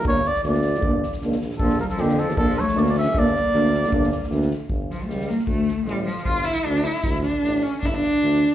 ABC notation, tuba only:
X:1
M:2/4
L:1/8
Q:"Swing 16ths" 1/4=154
K:none
V:1 name="Tuba" clef=bass
G,,,2 D,,2 | G,,,2 ^C,, _B,,, | _B,,,2 F,,2 | _B,,,2 D,,2 |
G,,,2 D,,2 | G,,,2 D,,2 | G,,,2 _D,,2 | D,,2 A,,,2 |
G,,,2 D,,2 | D,,2 A,,,2 | G,,,2 D,,2 |]